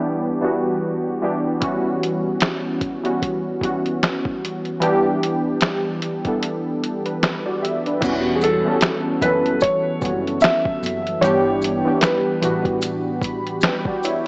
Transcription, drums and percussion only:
1.62 kick, closed hi-hat
2.03 closed hi-hat
2.41 finger snap, snare, closed hi-hat
2.81 kick, closed hi-hat
3.05 closed hi-hat
3.22 kick, closed hi-hat
3.61 kick, closed hi-hat
3.86 closed hi-hat
4.03 finger snap, snare, closed hi-hat
4.25 kick
4.45 closed hi-hat
4.65 closed hi-hat
4.82 closed hi-hat
5.23 closed hi-hat
5.61 finger snap, snare, closed hi-hat
6.02 closed hi-hat
6.25 kick, closed hi-hat
6.43 closed hi-hat
6.84 closed hi-hat
7.06 closed hi-hat
7.23 finger snap, snare, closed hi-hat
7.65 closed hi-hat
7.86 closed hi-hat
8.02 kick, closed hi-hat, crash, maracas
8.41 closed hi-hat, maracas
8.81 finger snap, snare, closed hi-hat, maracas
9.21 kick, closed hi-hat, maracas
9.46 closed hi-hat
9.61 kick, closed hi-hat, maracas
10.01 kick, closed hi-hat, maracas
10.27 closed hi-hat
10.41 snare, closed hi-hat, maracas
10.45 finger snap
10.65 kick
10.83 closed hi-hat, maracas
11.07 closed hi-hat
11.22 closed hi-hat, maracas
11.62 closed hi-hat, maracas
12.01 finger snap, snare, closed hi-hat, maracas
12.42 closed hi-hat, maracas
12.65 kick, closed hi-hat
12.82 closed hi-hat, maracas
13.22 kick, closed hi-hat, maracas
13.47 closed hi-hat
13.61 finger snap, snare, closed hi-hat, maracas
13.85 kick
14.03 closed hi-hat, maracas

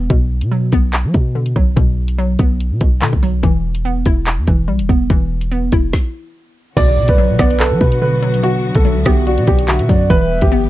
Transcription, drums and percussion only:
0.10 kick, closed hi-hat
0.41 closed hi-hat
0.72 kick, closed hi-hat
0.93 clap, closed hi-hat
1.14 kick, closed hi-hat
1.46 closed hi-hat
1.56 kick
1.77 kick, closed hi-hat
2.08 closed hi-hat
2.39 kick, closed hi-hat
2.60 closed hi-hat
2.81 kick, closed hi-hat
3.02 clap, closed hi-hat
3.13 kick
3.23 open hi-hat
3.43 kick, closed hi-hat
3.75 closed hi-hat
4.06 kick, closed hi-hat
4.27 clap, closed hi-hat
4.47 kick, closed hi-hat
4.79 closed hi-hat
4.89 kick
5.10 kick, closed hi-hat
5.41 closed hi-hat
5.72 kick, closed hi-hat
5.93 kick, snare
6.77 kick, closed hi-hat, crash
7.08 kick, closed hi-hat
7.39 kick, cross-stick, closed hi-hat
7.50 closed hi-hat
7.60 clap
7.81 kick
7.92 closed hi-hat
8.23 closed hi-hat
8.34 closed hi-hat
8.43 closed hi-hat
8.75 kick, closed hi-hat
9.05 kick, cross-stick, closed hi-hat
9.27 closed hi-hat
9.38 closed hi-hat
9.47 kick, closed hi-hat
9.59 closed hi-hat
9.68 clap
9.79 closed hi-hat
9.89 kick, open hi-hat
10.10 kick, closed hi-hat
10.41 kick, closed hi-hat

